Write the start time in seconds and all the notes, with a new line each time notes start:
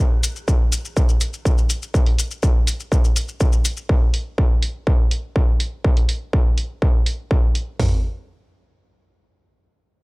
0.23 open hi-hat, maracas
0.36 maracas
0.48 kick, maracas
0.72 open hi-hat, maracas
0.85 maracas
0.97 kick, maracas
1.09 maracas
1.21 open hi-hat, maracas
1.33 maracas
1.45 kick, maracas
1.58 maracas
1.70 open hi-hat, maracas
1.83 maracas
1.94 kick, maracas
2.06 open hi-hat
2.18 open hi-hat, maracas
2.31 maracas
2.43 kick, maracas
2.67 open hi-hat, maracas
2.80 maracas
2.92 kick, maracas
3.04 maracas
3.16 open hi-hat, maracas
3.28 maracas
3.40 kick, maracas
3.53 maracas
3.65 open hi-hat, maracas
3.77 maracas
3.89 kick
4.14 open hi-hat
4.38 kick
4.62 open hi-hat
4.87 kick
5.11 open hi-hat
5.36 kick
5.60 open hi-hat
5.84 kick
5.97 open hi-hat
6.09 open hi-hat
6.33 kick
6.58 open hi-hat
6.82 kick
7.06 open hi-hat
7.31 kick
7.55 open hi-hat
7.80 kick, floor tom, open hi-hat